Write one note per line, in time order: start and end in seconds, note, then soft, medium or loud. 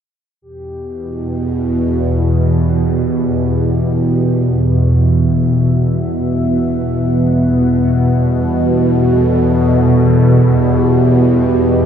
0.41 11.86 E2 medium
0.41 11.86 B2 medium
0.41 1.52 G4 loud
1.51 2.58 F#4 loud
2.18 11.86 F#5 medium
2.38 11.86 E5 medium
2.57 3.67 G4 medium
3.67 4.79 G4 medium
4.78 5.53 F#4 medium
5.51 5.62 G4 medium
5.61 5.72 F#4 medium
5.71 5.79 E4 medium
5.77 5.87 F#4 medium
9.13 10.79 A4 loud
10.78 11.33 G4 medium
11.35 11.86 G4 medium